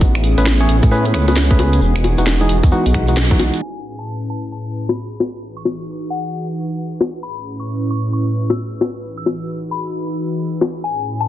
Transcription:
Already playing: analog synth pad B3
0.01 detuned saw bass A1, analog synth pad C#4 E4 G#4, kick, shaker
0.15 finger snap, shaker
0.24 open hi-hat
0.38 detuned saw bass A1, synth stab A3 C#4 G#4 B4, closed hi-hat, shaker
0.46 snare, shaker
0.60 synth stab A3 C#4 G#4 C#5, closed hi-hat, shaker
0.69 detuned saw bass A1, open hi-hat
0.82 detuned saw bass A2, kick, closed hi-hat, shaker
0.91 synth stab A3 C#4 G#4 B4, shaker
1.05 closed hi-hat, shaker
1.14 detuned saw bass C#2, synth stab A3 C#4 G#4 B4, finger snap, open hi-hat
1.28 synth stab A3 C#4 G#4 B4, closed hi-hat, high bongo, shaker
1.36 snare, shaker
1.51 synth stab A3 C#4 G#4 B4, kick, closed hi-hat, shaker
1.59 open hi-hat, high bongo
1.73 closed hi-hat, shaker
1.81 detuned saw bass E1, analog synth pad D#4 F#4, shaker
1.96 finger snap, closed hi-hat, shaker
2.04 open hi-hat, high bongo
2.18 detuned saw bass E1, synth stab E3 G#3 D#4 F#4, closed hi-hat, shaker
2.27 snare, shaker
2.41 synth stab E3 G#3 D#4 G#4, closed hi-hat, shaker
2.49 detuned saw bass E1, open hi-hat
2.63 detuned saw bass E2, kick, closed hi-hat, shaker
2.72 synth stab E3 G#3 D#4 F#4, shaker
2.86 detuned saw bass B1, open hi-hat, shaker
2.94 synth stab E3 G#3 D#4 F#4, finger snap, kick, open hi-hat
3.07 synth stab E3 G#3 D#4 F#4, closed hi-hat, shaker
3.17 snare, shaker
3.31 synth stab E3 G#3 D#4 F#4, kick, closed hi-hat, shaker
3.39 open hi-hat, high bongo
3.54 closed hi-hat, shaker
3.62 analog synth pad A2 C#4 E4 G#4 B4, synth bell G#5
3.99 synth bell A5
4.30 synth bell A5
4.52 synth bell A5
4.89 synth bell B5, high bongo
5.20 high bongo
5.43 analog synth pad E3 D#4 F#4 B4
5.57 synth bell C#6
5.65 high bongo
6.10 synth bell F#5
7.01 high bongo
7.23 analog synth pad A2 C#4 E4, synth bell B5
7.60 synth bell C#6
7.91 synth bell C#6
8.13 synth bell C#6
8.50 synth bell E6, high bongo
8.81 high bongo
9.04 analog synth pad E3 D#4 F#4 G#4
9.17 synth bell E6
9.26 high bongo
9.71 synth bell B5
10.61 high bongo
10.84 analog synth pad A2 C#4 E4, synth bell G#5
11.21 synth bell A5

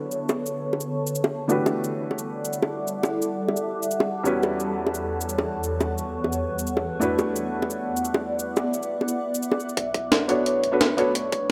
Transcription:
Already playing: ambient pad D3 B3 A4 C#5, felt piano C#4 D4 F#4 A4 B4
0.12 cabasa
0.29 high bongo, cabasa
0.46 cabasa
0.73 high bongo
0.81 cabasa
1.07 cabasa
1.15 cabasa
1.24 high bongo
1.48 felt piano E3 A3 D4 F#4 G4 B4, ambient pad G3 E4 A4 D5 F#5, cabasa
1.66 high bongo, cabasa
1.84 cabasa
2.11 high bongo
2.19 cabasa
2.45 cabasa
2.53 cabasa
2.62 high bongo
2.88 cabasa
3.03 high bongo, cabasa
3.22 cabasa
3.48 high bongo
3.57 cabasa
3.83 cabasa
3.91 cabasa
4.00 high bongo
4.23 felt piano E2 G3 C#4 E4 F#4 B4, ambient pad E2 B3 C#5, cabasa
4.43 high bongo, cabasa
4.60 cabasa
4.87 high bongo
4.95 cabasa
5.21 cabasa
5.29 cabasa
5.38 high bongo
5.64 cabasa
5.81 high bongo, cabasa
5.98 cabasa
6.24 high bongo
6.33 cabasa
6.59 cabasa
6.67 cabasa
6.77 high bongo
7.00 felt piano A3 D4 E4 F#4 B4, ambient pad B3 E4 D5, cabasa
7.19 high bongo, cabasa
7.36 cabasa
7.62 high bongo
7.70 cabasa
7.97 cabasa
8.05 cabasa
8.14 high bongo
8.39 cabasa
8.56 high bongo, cabasa
8.74 cabasa
8.83 cabasa
9.01 high bongo
9.08 cabasa
9.35 cabasa
9.43 cabasa
9.52 high bongo
9.60 cabasa
9.69 cabasa
9.77 sub bass B1, ambient pad A3 B3 D4 B4, flugelhorn E5, kick, closed hi-hat
9.94 kick, closed hi-hat
10.12 snare, closed hi-hat
10.28 felt piano B3 D4 F#4 A4 C#5, flugelhorn D5, closed hi-hat
10.46 flugelhorn C#5, closed hi-hat
10.64 closed hi-hat
10.72 felt piano B3 D4 F#4 A4 B4
10.81 flugelhorn B4, snare, closed hi-hat
10.97 felt piano B3 D4 F#4 A4 C#5, closed hi-hat
11.15 flugelhorn C#5, closed hi-hat
11.32 kick, closed hi-hat
11.41 sub bass B1

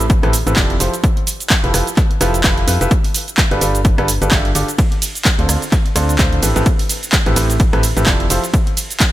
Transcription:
Already playing: fm bass A1
0.00 cabasa
0.10 kick, closed hi-hat, cabasa
0.23 fm bass A1, grand piano A2 C4 E4 G4 A4 B4, cross-stick, closed hi-hat
0.33 open hi-hat, cabasa
0.47 fm bass A1, grand piano A2 C4 E4 G4 A4 B4, closed hi-hat, cabasa
0.56 grand piano F3 C4 E4 G4 A4 D5, kick, clap, closed hi-hat, cabasa
0.70 closed hi-hat
0.80 fm bass F1, grand piano F3 E4 F4 G4 A4 C5, open hi-hat, cabasa
0.94 closed hi-hat, cabasa
1.04 kick, closed hi-hat, cabasa
1.17 closed hi-hat
1.27 open hi-hat, cabasa
1.40 closed hi-hat, cabasa
1.50 kick, clap, closed hi-hat, cabasa
1.64 fm bass F1, grand piano F3 E4 F4 G4 A4 B4, closed hi-hat
1.74 fm bass F1, grand piano F3 E4 F4 G4 A4 B4, cross-stick, open hi-hat, cabasa
1.87 closed hi-hat, cabasa
1.97 kick, clap, closed hi-hat, cabasa
2.11 closed hi-hat
2.21 fm bass F1, grand piano F3 E4 F4 G4 A4 B4, cross-stick, open hi-hat, cabasa
2.34 closed hi-hat, cabasa
2.44 fm bass F1, grand piano F3 E4 F4 G4 A4 B4, kick, clap, closed hi-hat, cabasa
2.58 closed hi-hat
2.68 fm bass F2, grand piano E4 F4 G4 A4 B4, open hi-hat, cabasa
2.81 fm bass F1, grand piano E4 F4 G4 A4 B4, closed hi-hat, cabasa
2.91 kick, closed hi-hat, cabasa
3.04 open hi-hat
3.14 open hi-hat, cabasa
3.28 closed hi-hat, cabasa
3.37 kick, clap, closed hi-hat, cabasa
3.51 fm bass G1, grand piano G3 D4 F4 G4 A4 B4, closed hi-hat
3.61 fm bass G1, grand piano G3 D4 F4 G4 A4 B4, open hi-hat, cabasa
3.75 closed hi-hat, cabasa
3.85 kick, closed hi-hat, cabasa
3.98 fm bass G1, grand piano G3 D4 F4 G4 A4 B4, cross-stick, closed hi-hat
4.08 open hi-hat, cabasa
4.22 fm bass G1, grand piano G3 D4 F4 G4 A4 B4, closed hi-hat, cabasa
4.31 fm bass G1, grand piano G3 D4 F4 G4 A4 E5, kick, clap, closed hi-hat, cabasa
4.45 closed hi-hat
4.55 fm bass G1, grand piano D3 D4 F4 G4 A4 D5, open hi-hat, cabasa
4.68 closed hi-hat, cabasa
4.78 kick, closed hi-hat, ride, cabasa
4.92 closed hi-hat
5.02 open hi-hat, ride, cabasa
5.15 closed hi-hat, cabasa
5.25 kick, clap, closed hi-hat, ride, cabasa
5.39 fm bass D2, grand piano D3 C4 D4 F4 A4 C5, closed hi-hat
5.49 fm bass D2, grand piano D3 C4 D4 F4 A4 C5, cross-stick, open hi-hat, ride, cabasa
5.62 closed hi-hat, cabasa
5.72 kick, clap, closed hi-hat, ride, cabasa
5.86 closed hi-hat
5.96 fm bass D2, grand piano D3 C4 D4 F4 A4 C5, cross-stick, open hi-hat, ride, cabasa
6.09 closed hi-hat, cabasa
6.19 fm bass D2, grand piano A2 C4 D4 F4 A4 C5, kick, clap, closed hi-hat, ride, cabasa
6.33 closed hi-hat
6.43 fm bass A1, grand piano A2 C4 E4 G4 A4 B4, open hi-hat, ride, cabasa
6.56 fm bass A1, grand piano A2 C4 E4 G4 A4 B4, closed hi-hat, cabasa
6.66 kick, closed hi-hat, ride, cabasa
6.79 open hi-hat
6.89 open hi-hat, ride, cabasa
7.03 closed hi-hat, cabasa
7.12 kick, clap, closed hi-hat, ride, cabasa
7.26 fm bass A1, grand piano A2 C4 E4 G4 A4 B4, closed hi-hat
7.36 fm bass A1, grand piano A2 C4 E4 G4 A4 B4, open hi-hat, ride, cabasa
7.50 closed hi-hat, cabasa
7.60 kick, closed hi-hat, ride, cabasa
7.73 fm bass A1, grand piano A2 C4 E4 G4 A4 B4, cross-stick, closed hi-hat
7.83 open hi-hat, ride, cabasa
7.97 fm bass A1, grand piano A2 C4 E4 G4 A4 B4, closed hi-hat, cabasa
8.06 grand piano F3 C4 E4 G4 A4 D5, kick, clap, closed hi-hat, ride, cabasa
8.20 closed hi-hat
8.30 fm bass F1, grand piano F3 E4 F4 G4 A4 C5, open hi-hat, ride, cabasa
8.44 closed hi-hat, cabasa
8.54 kick, closed hi-hat, ride, cabasa
8.67 closed hi-hat
8.77 open hi-hat, ride, cabasa
8.90 closed hi-hat, cabasa
9.00 kick, clap, closed hi-hat, ride, cabasa

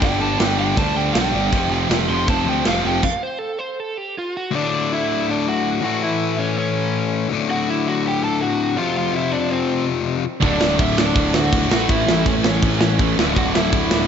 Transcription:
0.00 picked electric bass G1, distorted electric guitar G2 D3 G3, kick, open hi-hat
0.04 overdriven electric guitar G5
0.20 distorted electric guitar G2 D3 G3, overdriven electric guitar A5
0.38 picked electric bass G1, distorted electric guitar G2 D3 G3, overdriven electric guitar G5, snare, open hi-hat
0.57 distorted electric guitar G2 D3 G3, overdriven electric guitar G5
0.77 picked electric bass D2, distorted electric guitar G2 D3 G3, overdriven electric guitar A5, kick, open hi-hat
0.95 distorted electric guitar G2 D3 G3, overdriven electric guitar G5
1.14 picked electric bass B1, distorted electric guitar G2 D3 G3, overdriven electric guitar G5, snare, open hi-hat
1.33 picked electric bass G1, distorted electric guitar G2 D3 G3
1.52 picked electric bass F1, distorted electric guitar F2 C3 F3, kick, open hi-hat
1.70 distorted electric guitar F2 C3 F3
1.89 picked electric bass F1, distorted electric guitar F2 C3 F3, snare, open hi-hat
2.08 picked electric bass F1, distorted electric guitar F2 C3 F3, overdriven electric guitar C6
2.27 picked electric bass F1, distorted electric guitar F2 C3 F3, overdriven electric guitar A5, kick, open hi-hat
2.45 picked electric bass D2, distorted electric guitar F2 C3 F3
2.49 overdriven electric guitar G5
2.65 picked electric bass F1, distorted electric guitar F2 C3 F3, overdriven electric guitar F5, snare, open hi-hat
2.84 picked electric bass F1, distorted electric guitar F2 C3 F3, overdriven electric guitar G5
3.03 overdriven electric guitar F5, kick, crash
3.23 overdriven electric guitar C5
3.39 overdriven electric guitar A4
3.59 overdriven electric guitar C5
3.80 overdriven electric guitar A4
3.97 overdriven electric guitar G4
4.18 overdriven electric guitar F4
4.37 overdriven electric guitar F#4
4.51 distorted electric guitar D2 A2 D3, overdriven electric guitar D4
4.55 overdriven electric guitar D5
4.92 overdriven electric guitar E4 E5
5.30 overdriven electric guitar D4 D5
5.48 overdriven electric guitar F#4 F#5
5.81 distorted electric guitar A2 E3 A3, overdriven electric guitar F#4 F#5
6.04 overdriven electric guitar E4 E5
6.39 overdriven electric guitar C#4 C#5
6.58 overdriven electric guitar C#4 C#5
7.29 distorted electric guitar D2 A2 D3
7.50 overdriven electric guitar F#4 F#5
7.69 overdriven electric guitar E4 E5
7.88 overdriven electric guitar F#4 F#5
8.07 overdriven electric guitar G4 G5
8.24 overdriven electric guitar A4 A5
8.42 overdriven electric guitar F#4 F#5
8.77 distorted electric guitar F2 C3 F3, overdriven electric guitar F4 F5
8.97 overdriven electric guitar F4 F5
9.16 overdriven electric guitar E4 E5
9.33 overdriven electric guitar D4 D5
9.51 overdriven electric guitar C4 C5
10.40 picked electric bass D1, distorted electric guitar D2 A2 D3, overdriven electric guitar D4, kick, crash
10.46 overdriven electric guitar D5
10.61 picked electric bass D1, snare
10.79 picked electric bass D1, overdriven electric guitar E4 E5, kick, crash
10.98 overdriven electric guitar D4 D5, snare
11.15 picked electric bass D1, kick, crash
11.33 picked electric bass D2, overdriven electric guitar F#4 F#5, snare
11.52 picked electric bass D1, kick, crash
11.68 picked electric bass A1, distorted electric guitar A2 E3 A3, overdriven electric guitar F#4, snare
11.72 overdriven electric guitar F#5
11.89 picked electric bass A1, overdriven electric guitar E4 E5, kick, crash
12.07 picked electric bass A1, snare
12.26 picked electric bass A1, overdriven electric guitar C#4 C#5, kick, crash
12.44 picked electric bass A1, overdriven electric guitar C#4 C#5, snare
12.62 picked electric bass A1, kick, crash
12.81 picked electric bass A1, snare
12.99 picked electric bass A1, distorted electric guitar A2 E3 A3, kick, crash
13.16 picked electric bass D1, distorted electric guitar D2 A2 D3, snare
13.36 picked electric bass D1, overdriven electric guitar F#4 F#5, kick, crash
13.54 picked electric bass D1, overdriven electric guitar E4 E5, snare
13.73 picked electric bass D1, kick, crash
13.91 snare

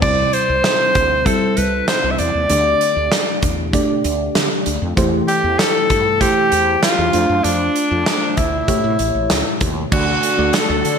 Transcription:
0.02 fretless electric bass C2, fm electric piano C3 G3 C4 E4 C5, alto saxophone D5, kick, splash
0.33 alto saxophone C5, closed hi-hat
0.49 fretless electric bass C2
0.64 snare, closed hi-hat
0.95 fretless electric bass D2, kick, closed hi-hat
1.25 fm electric piano G3 C4 E4 E5, alto saxophone A4, kick, closed hi-hat
1.57 fretless electric bass C2, alto saxophone B4, closed hi-hat
1.88 alto saxophone C5, snare, closed hi-hat
2.04 fretless electric bass C2
2.11 alto saxophone E5
2.18 fretless electric bass E2, alto saxophone D5, closed hi-hat
2.35 fretless electric bass D#2
2.49 fretless electric bass D2, fm electric piano D3 A3 D4 G4 D5, closed hi-hat
2.81 closed hi-hat
2.96 fretless electric bass D2
3.12 snare, closed hi-hat
3.42 fretless electric bass E2, kick, closed hi-hat
3.73 fm electric piano A3 D4 G4 D5, kick, closed hi-hat
4.04 fretless electric bass D2, closed hi-hat
4.35 fretless electric bass D3, snare, closed hi-hat
4.66 fretless electric bass D2, closed hi-hat
4.82 fretless electric bass F2
4.96 fretless electric bass E2, fm electric piano E3 A3 E4 G4 C5, kick, closed hi-hat
5.28 alto saxophone G4, closed hi-hat
5.44 fretless electric bass E2
5.59 alto saxophone A4, snare, closed hi-hat
5.90 fretless electric bass G2, kick, closed hi-hat
6.20 fm electric piano A3 E4 G4 C5, alto saxophone G4, kick, closed hi-hat
6.52 fretless electric bass E2, closed hi-hat
6.83 alto saxophone F4, snare, closed hi-hat
6.98 fretless electric bass E2
7.13 fretless electric bass F2, fm electric piano A3 D4 F4 C5, closed hi-hat
7.29 fretless electric bass F#2
7.44 fretless electric bass F2, alto saxophone D4, closed hi-hat
7.76 closed hi-hat
7.91 fretless electric bass F2
8.06 snare, closed hi-hat
8.37 fretless electric bass D2, alto saxophone E4, kick, closed hi-hat
8.68 fretless electric bass A1, fm electric piano A2 A3 E4 G4 C#5, kick, closed hi-hat
8.84 fretless electric bass A2
8.99 fretless electric bass A1, closed hi-hat
9.15 fretless electric bass A1
9.30 fretless electric bass C#2, snare, closed hi-hat
9.61 fretless electric bass D#2, kick, closed hi-hat
9.91 fretless electric bass D2, string machine D3 D4 F#4 A4, fm electric piano D3 A3 D4 F#4 D5, alto saxophone F#4, kick, crash
10.23 closed hi-hat
10.38 fretless electric bass D2, fm electric piano A3 D4 F#4 D5
10.54 alto saxophone A4, snare, clap, closed hi-hat
10.69 fretless electric bass D2
10.85 fretless electric bass D3, closed hi-hat

